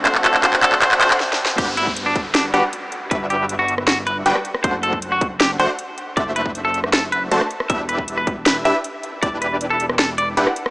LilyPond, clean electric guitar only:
\new Staff \with { instrumentName = "Clean electric guitar" } { \time 4/4 \key g \major \tempo 4 = 157 c''16 r16 a'8 c''16 r16 a'8 c''16 r16 c''16 r4 r16 | g'16 r16 e'8 r16 d'8 r16 d'16 r16 g'16 r4 r16 | b'16 r16 g'8 r16 fis'8 r16 fis'16 r16 b'16 r4 r16 | c''16 r16 a'8 r16 fis'8 r16 g'16 r16 c''16 r4 r16 |
d''16 r16 b'8 r16 a'8 r16 a'16 r16 b'16 r4 r16 | e''16 r16 b'8 r16 b'8 r16 b'16 r16 e''16 r4 r16 | d''16 r16 b'8 r16 a'8 r16 a'16 r16 d''16 r4 r16 | }